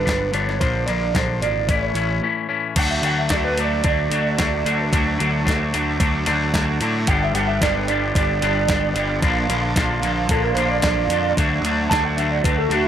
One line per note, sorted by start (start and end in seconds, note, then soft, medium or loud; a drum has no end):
0.00 0.31 G2 medium
0.00 0.34 B4 medium
0.05 0.31 G1 medium
0.05 0.31 D3 medium
0.05 0.32 G3 medium
0.05 0.32 B3 medium
0.05 0.33 D4 medium
0.05 kick loud
0.05 closed hi-hat medium
0.09 snare loud
0.32 0.58 G1 medium
0.32 0.58 G2 medium
0.32 0.58 D3 medium
0.32 0.59 G3 medium
0.32 0.59 B3 medium
0.32 0.59 D4 medium
0.32 0.60 C#5 medium
0.32 closed hi-hat medium
0.49 snare soft
0.60 0.86 A#1 medium
0.60 0.86 A#2 medium
0.60 0.86 D3 medium
0.60 0.87 F3 medium
0.60 0.87 A#3 medium
0.60 0.88 D4 medium
0.60 0.86 C5 medium
0.60 kick loud
0.60 closed hi-hat medium
0.86 1.12 A#1 medium
0.86 1.13 A#2 medium
0.86 1.13 D3 medium
0.86 1.13 F3 medium
0.86 1.14 A#3 medium
0.86 1.14 D4 medium
0.86 1.15 D5 medium
0.86 closed hi-hat medium
1.14 1.40 A#1 medium
1.14 1.41 A#2 medium
1.14 1.41 D3 medium
1.14 1.42 F3 medium
1.14 1.42 A#3 medium
1.14 1.42 D4 loud
1.14 1.41 C5 medium
1.14 kick medium
1.14 snare medium
1.14 closed hi-hat medium
1.41 1.66 G#1 medium
1.41 1.67 A#2 medium
1.41 1.68 D3 medium
1.41 1.68 F3 medium
1.41 1.68 A#3 medium
1.41 1.68 D4 medium
1.41 1.70 D5 medium
1.41 closed hi-hat medium
1.69 1.93 A1 medium
1.69 1.94 A2 medium
1.69 1.95 E3 medium
1.69 1.95 A3 medium
1.69 1.95 C#4 medium
1.69 1.96 E4 loud
1.69 2.47 C#5 medium
1.69 kick loud
1.69 closed hi-hat medium
1.94 2.19 A1 medium
1.94 2.21 A2 medium
1.94 2.21 E3 medium
1.94 2.22 A3 medium
1.94 2.22 C#4 medium
1.94 2.23 E4 loud
1.94 closed hi-hat medium
2.22 2.47 A2 medium
2.22 2.47 E3 medium
2.22 2.47 A3 medium
2.22 2.48 C#4 medium
2.22 2.48 E4 medium
2.48 2.74 A2 medium
2.48 2.75 E3 medium
2.48 2.75 A3 medium
2.48 2.75 C#4 medium
2.48 2.75 E4 medium
2.76 3.01 D2 medium
2.76 3.02 D3 medium
2.76 3.02 F#3 medium
2.76 3.03 A3 medium
2.76 3.03 D4 loud
2.76 3.06 F#4 loud
2.76 2.90 F#5 medium
2.76 kick loud
2.76 closed hi-hat medium
2.76 crash loud
2.90 3.05 E5 medium
3.02 3.28 D2 medium
3.02 3.30 D3 medium
3.02 3.30 F#3 medium
3.02 3.30 A3 medium
3.02 3.31 D4 medium
3.02 3.19 F#5 medium
3.02 closed hi-hat medium
3.06 3.31 F#4 loud
3.19 3.31 E5 medium
3.29 3.81 D2 medium
3.29 3.57 D3 medium
3.29 3.58 F#3 medium
3.29 3.58 A3 medium
3.29 3.58 D4 loud
3.29 3.59 F#4 loud
3.29 3.44 D5 medium
3.29 kick medium
3.29 snare loud
3.29 closed hi-hat medium
3.44 3.59 B4 medium
3.58 3.82 D3 medium
3.58 3.83 F#3 medium
3.58 3.83 A3 medium
3.58 3.84 D4 medium
3.58 3.86 F#4 medium
3.58 3.85 D5 medium
3.58 closed hi-hat medium
3.83 4.09 D2 medium
3.83 4.11 D3 medium
3.83 4.10 F#3 medium
3.83 4.11 A3 medium
3.83 4.12 D4 medium
3.83 4.13 F#4 medium
3.83 4.90 D5 medium
3.83 kick loud
3.83 closed hi-hat medium
4.10 4.36 D2 medium
4.10 4.37 D3 medium
4.10 4.37 F#3 medium
4.10 4.38 A3 loud
4.10 4.39 D4 loud
4.10 4.38 F#4 loud
4.10 closed hi-hat medium
4.38 4.63 D2 medium
4.38 4.64 D3 medium
4.38 4.64 F#3 medium
4.38 4.64 A3 medium
4.38 4.66 D4 medium
4.38 4.67 F#4 medium
4.38 kick loud
4.38 snare loud
4.38 closed hi-hat medium
4.65 4.90 D2 medium
4.65 4.91 D3 medium
4.65 4.91 F#3 medium
4.65 4.92 A3 medium
4.65 4.93 D4 medium
4.65 4.94 F#4 medium
4.65 closed hi-hat medium
4.92 5.17 D2 medium
4.92 5.17 D3 medium
4.92 5.17 F#3 medium
4.92 5.17 A3 medium
4.92 5.19 D4 medium
4.92 5.22 F#4 loud
4.92 kick loud
4.92 closed hi-hat medium
5.18 5.44 D2 medium
5.18 5.43 D3 medium
5.18 5.44 F#3 medium
5.18 5.44 A3 medium
5.18 5.46 D4 medium
5.18 closed hi-hat medium
5.23 5.49 F#4 loud
5.45 5.71 D2 medium
5.45 5.71 D3 medium
5.45 5.71 F#3 loud
5.45 5.72 A3 medium
5.45 5.74 D4 loud
5.45 kick loud
5.45 closed hi-hat medium
5.49 5.73 F#3 medium
5.49 5.75 F#4 loud
5.49 snare loud
5.72 5.98 D2 medium
5.72 5.98 D3 medium
5.72 5.98 F#3 medium
5.72 5.99 A3 medium
5.72 6.00 D4 medium
5.72 closed hi-hat medium
5.76 6.01 F#4 medium
5.99 6.24 D2 medium
5.99 6.25 D3 medium
5.99 6.25 F#3 medium
5.99 6.26 A3 medium
5.99 6.26 D4 medium
5.99 6.29 F#4 loud
5.99 kick loud
5.99 closed hi-hat medium
6.26 6.51 D2 medium
6.26 6.51 D3 loud
6.26 6.52 F#3 loud
6.26 6.53 A3 loud
6.26 6.53 D4 loud
6.26 6.56 F#4 medium
6.26 closed hi-hat medium
6.53 6.78 D2 medium
6.53 6.80 D3 medium
6.53 6.80 F#3 medium
6.53 6.80 A3 medium
6.53 6.82 D4 medium
6.53 kick loud
6.53 snare loud
6.53 closed hi-hat medium
6.57 6.83 F#4 medium
6.81 7.05 A2 medium
6.81 7.06 D3 medium
6.81 7.06 F#3 medium
6.81 7.06 A3 medium
6.81 7.10 D4 medium
6.81 7.07 F#4 loud
6.81 closed hi-hat medium
7.07 7.32 G1 medium
7.07 7.33 G2 loud
7.07 7.33 D3 medium
7.07 7.34 G3 loud
7.07 7.34 B3 loud
7.07 7.36 D4 loud
7.07 7.35 G4 loud
7.07 7.21 F#5 medium
7.07 kick loud
7.07 closed hi-hat medium
7.24 7.34 E5 medium
7.33 7.58 G1 medium
7.33 7.60 G2 medium
7.33 7.61 D3 medium
7.33 7.61 G3 medium
7.33 7.61 B3 medium
7.33 7.62 D4 medium
7.33 7.61 G4 loud
7.33 7.47 F#5 medium
7.33 closed hi-hat medium
7.47 7.61 E5 medium
7.61 8.11 G1 medium
7.61 7.87 G2 medium
7.61 7.88 D3 medium
7.61 7.88 G3 medium
7.61 7.88 B3 medium
7.61 7.90 D4 loud
7.61 7.90 G4 loud
7.61 7.76 D5 medium
7.61 kick loud
7.61 snare loud
7.61 closed hi-hat medium
7.76 7.88 B4 medium
7.88 8.15 G2 medium
7.88 8.15 D3 medium
7.88 8.15 G3 medium
7.88 8.16 B3 medium
7.88 8.17 D4 medium
7.88 8.15 G4 medium
7.88 8.14 D5 medium
7.88 closed hi-hat medium
8.15 8.40 G1 medium
8.15 8.41 G2 medium
8.15 8.41 D3 medium
8.15 8.42 G3 medium
8.15 8.42 B3 medium
8.15 8.44 D4 medium
8.15 8.42 G4 medium
8.15 9.19 D5 medium
8.15 kick loud
8.15 closed hi-hat medium
8.42 8.66 G1 medium
8.42 8.68 G2 medium
8.42 8.68 D3 loud
8.42 8.69 G3 medium
8.42 8.69 B3 loud
8.42 8.71 D4 loud
8.42 8.71 G4 loud
8.42 closed hi-hat medium
8.69 8.93 G1 medium
8.69 8.94 G2 medium
8.69 8.95 D3 medium
8.69 8.95 G3 medium
8.69 8.95 B3 loud
8.69 8.96 D4 medium
8.69 8.97 G4 medium
8.69 kick loud
8.69 snare loud
8.69 closed hi-hat medium
8.95 9.19 G1 medium
8.95 9.20 G2 medium
8.95 9.21 D3 medium
8.95 9.21 G3 medium
8.95 9.21 B3 medium
8.95 9.24 D4 medium
8.95 9.22 G4 loud
8.95 closed hi-hat medium
9.21 9.47 A#1 loud
9.21 9.47 A#2 medium
9.21 9.47 D3 medium
9.21 9.48 F3 loud
9.21 9.48 A#3 medium
9.21 9.49 D4 loud
9.21 kick loud
9.21 closed hi-hat medium
9.26 9.51 F4 loud
9.49 9.73 A#1 medium
9.49 9.75 A#2 medium
9.49 9.75 D3 medium
9.49 9.76 F3 medium
9.49 9.76 A#3 medium
9.49 9.78 D4 medium
9.49 9.78 F4 medium
9.49 closed hi-hat medium
9.76 10.00 A#1 medium
9.76 10.01 A#2 medium
9.76 10.02 D3 loud
9.76 10.03 F3 loud
9.76 10.03 A#3 loud
9.76 10.04 D4 loud
9.76 10.05 F4 medium
9.76 kick medium
9.76 snare loud
9.76 closed hi-hat medium
10.02 10.26 A#1 medium
10.02 10.29 A#2 medium
10.02 10.30 D3 medium
10.02 10.30 F3 medium
10.02 10.30 A#3 medium
10.02 10.31 D4 medium
10.02 closed hi-hat medium
10.06 10.31 F4 medium
10.29 10.53 A#1 medium
10.29 10.55 A#2 medium
10.29 10.56 D3 medium
10.29 10.56 F3 medium
10.29 10.57 A#3 medium
10.29 10.58 D4 medium
10.29 10.57 F4 medium
10.29 10.43 A4 medium
10.29 kick loud
10.29 closed hi-hat medium
10.44 10.53 A#4 medium
10.53 10.79 A#1 medium
10.53 10.82 A#2 medium
10.53 10.83 D3 medium
10.53 10.69 C5 medium
10.53 closed hi-hat medium
10.58 10.83 F3 loud
10.58 10.84 A#3 loud
10.58 10.84 D4 loud
10.58 10.85 F4 loud
10.69 10.81 D5 medium
10.82 11.07 A#1 medium
10.82 11.09 A#2 medium
10.82 11.09 D3 medium
10.82 11.10 F3 medium
10.82 11.10 A#3 medium
10.82 11.11 D4 medium
10.82 11.34 D5 medium
10.82 kick loud
10.82 snare loud
10.82 closed hi-hat medium
10.86 11.11 F4 medium
11.07 11.33 F2 medium
11.07 11.35 A#2 medium
11.07 11.35 D3 medium
11.07 11.36 F3 medium
11.07 11.36 A#3 medium
11.07 closed hi-hat medium
11.12 11.38 D4 medium
11.12 11.36 F4 medium
11.36 11.61 D2 loud
11.36 11.64 D3 medium
11.36 11.65 F#3 loud
11.36 11.65 A3 medium
11.36 11.66 D4 loud
11.36 11.66 F#4 loud
11.36 kick loud
11.36 closed hi-hat medium
11.61 11.86 D2 medium
11.61 11.90 D3 medium
11.61 closed hi-hat medium
11.66 11.91 F#3 medium
11.66 11.92 A3 medium
11.66 11.92 D4 medium
11.66 11.93 F#4 medium
11.90 12.40 D2 medium
11.90 12.17 D3 medium
11.90 12.18 F#3 loud
11.90 12.19 A3 medium
11.90 12.19 D4 loud
11.90 12.20 F#4 loud
11.90 12.03 A5 medium
11.90 kick loud
11.90 snare loud
11.90 closed hi-hat medium
12.05 12.17 F#5 medium
12.17 12.44 D3 medium
12.17 12.44 F#3 medium
12.17 12.44 A3 medium
12.17 12.45 D4 medium
12.17 12.46 F#4 medium
12.17 12.31 E5 medium
12.17 closed hi-hat medium
12.31 12.44 D5 medium
12.44 12.68 D2 medium
12.44 12.69 D3 medium
12.44 12.70 F#3 medium
12.44 12.71 A3 medium
12.44 12.72 D4 medium
12.44 12.73 F#4 loud
12.44 12.57 B4 medium
12.44 kick loud
12.44 closed hi-hat medium
12.58 12.72 A4 medium
12.69 12.88 D2 medium
12.69 12.88 D3 medium
12.69 12.88 F#3 loud
12.69 12.88 A3 loud
12.69 12.88 D4 loud
12.69 12.84 F#4 medium
12.69 closed hi-hat medium
12.74 12.88 F#4 loud
12.84 12.88 E4 medium